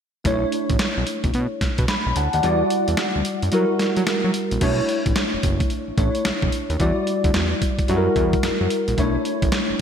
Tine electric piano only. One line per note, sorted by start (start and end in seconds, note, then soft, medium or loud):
0.24 1.58 A3 medium
0.24 1.59 D4 medium
0.24 1.59 E4 medium
0.24 1.60 C#5 medium
1.89 2.15 B5 medium
2.16 2.32 F#5 medium
2.16 2.33 A5 medium
2.34 2.44 D5 medium
2.34 2.59 F#5 medium
2.42 3.50 G3 medium
2.42 3.50 E4 medium
2.42 3.50 F#4 medium
2.42 3.51 D5 medium
3.51 4.59 G3 medium
3.51 4.59 E4 medium
3.51 4.60 F#4 medium
3.51 4.60 A#4 medium
4.60 5.95 A3 medium
4.60 5.95 D4 medium
4.60 5.95 E4 medium
4.60 5.96 C#5 medium
5.98 6.79 A3 medium
5.98 6.80 D4 medium
5.98 6.79 E4 medium
5.98 6.80 C#5 medium
6.79 7.86 G3 medium
6.79 7.87 E4 medium
6.79 7.87 F#4 medium
6.79 7.87 D5 medium
7.88 8.95 G3 medium
7.88 8.96 E4 medium
7.88 8.96 F#4 medium
7.88 7.98 A4 medium
7.97 9.00 A#4 medium
8.97 9.81 A3 medium
8.97 9.81 D4 medium
8.97 9.81 E4 medium
8.97 9.81 C#5 medium